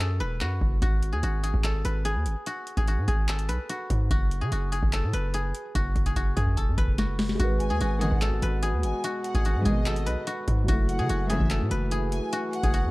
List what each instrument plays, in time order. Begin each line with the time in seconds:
Already playing: 808-style bass F#2, guzheng F#4 B4
0.00 guzheng A4
0.20 808-style bass E1, guzheng B4
0.41 808-style bass F#2, guzheng F#4, clap
0.61 808-style bass F#1, kick
0.82 808-style bass G#1, guzheng F#4, kick, closed hi-hat
1.03 closed hi-hat
1.13 808-style bass D#2, guzheng G#4
1.23 808-style bass G#1, guzheng F#4, closed hi-hat
1.43 guzheng G#4, closed hi-hat
1.54 808-style bass G#1, kick
1.64 guzheng A4, clap, closed hi-hat
1.85 808-style bass G#1, guzheng B4, closed hi-hat
2.05 guzheng G#4, closed hi-hat
2.15 808-style bass D#2
2.26 808-style bass G#1, closed hi-hat
2.46 guzheng F#4, closed hi-hat
2.67 closed hi-hat
2.77 808-style bass G#1, guzheng G#4, kick, closed hi-hat
2.88 guzheng F#4, closed hi-hat
2.98 808-style bass G#2
3.08 808-style bass G#1, guzheng G#4, kick, closed hi-hat
3.28 guzheng A4, clap, closed hi-hat
3.39 closed hi-hat
3.49 808-style bass B1, guzheng B4, closed hi-hat
3.69 guzheng F#4, closed hi-hat
3.90 808-style bass G#2, kick, closed hi-hat
4.11 808-style bass F#1, guzheng F#4, kick, closed hi-hat
4.31 closed hi-hat
4.41 808-style bass C#3, guzheng G#4
4.52 808-style bass F#1, guzheng F#4, closed hi-hat
4.72 guzheng G#4, closed hi-hat
4.83 808-style bass F#1, kick
4.93 guzheng A4, clap, closed hi-hat
5.03 808-style bass A2
5.13 808-style bass F#1, guzheng B4, closed hi-hat
5.34 guzheng G#4, closed hi-hat
5.55 closed hi-hat
5.75 808-style bass F#1, guzheng F#4, kick, closed hi-hat
5.96 808-style bass F#1, kick, closed hi-hat
6.06 guzheng G#4, kick, closed hi-hat
6.16 guzheng F#4, kick, closed hi-hat
6.37 808-style bass F#2, guzheng G#4, kick, closed hi-hat
6.47 kick
6.57 808-style bass E1, guzheng A4, kick, closed hi-hat
6.68 808-style bass F#2
6.78 808-style bass F#1, guzheng B4, kick, closed hi-hat
6.88 kick
6.98 guzheng F#4, snare, closed hi-hat
7.19 snare, open hi-hat
7.29 snare
7.35 grand piano G#3
7.39 808-style bass G#1, french horn section B2 G#3 F#4, grand piano F#4, guzheng F#4, kick, closed hi-hat
7.44 grand piano B4
7.60 violin section G#5, closed hi-hat
7.70 808-style bass D#2, guzheng G#4
7.81 808-style bass G#1, guzheng F#4, closed hi-hat
8.01 string section G#2 B2 D#3, guzheng G#4, violin section F#5, closed hi-hat
8.11 808-style bass G#1, kick
8.21 guzheng A4, clap, closed hi-hat
8.42 808-style bass G#1, guzheng B4, closed hi-hat
8.63 guzheng G#4, closed hi-hat
8.73 808-style bass D#2
8.83 808-style bass G#1, violin section G#5, closed hi-hat
9.04 guzheng F#4, closed hi-hat
9.24 violin section F#5, closed hi-hat
9.35 808-style bass G#1, guzheng G#4, kick, closed hi-hat
9.45 guzheng F#4, closed hi-hat
9.55 808-style bass G#2
9.65 808-style bass G#1, string section G#2 B2 D#3, guzheng G#4, violin section D#5, kick, closed hi-hat
9.86 guzheng A4, clap, closed hi-hat
9.96 closed hi-hat
10.06 808-style bass B1, guzheng B4, closed hi-hat
10.27 guzheng F#4, closed hi-hat
10.48 808-style bass G#2, kick, closed hi-hat
10.64 grand piano F#3
10.68 808-style bass F#1, french horn section E3 A3 F#4, grand piano E4, guzheng F#4, kick, closed hi-hat
10.73 grand piano A3
10.89 violin section F#5, closed hi-hat
10.99 808-style bass C#3, guzheng G#4
11.09 808-style bass F#1, guzheng F#4, closed hi-hat
11.30 string section A2 C#3 E3, guzheng G#4, violin section E5, closed hi-hat
11.40 808-style bass F#1, kick
11.50 guzheng A4, clap, closed hi-hat
11.61 808-style bass A2
11.71 808-style bass F#1, guzheng B4, closed hi-hat
11.91 guzheng G#4, closed hi-hat
12.12 violin section G#5, closed hi-hat
12.33 guzheng F#4, closed hi-hat
12.53 violin section F#5, closed hi-hat
12.63 808-style bass F#1, guzheng G#4, kick, closed hi-hat
12.74 guzheng F#4, closed hi-hat
12.84 808-style bass F#2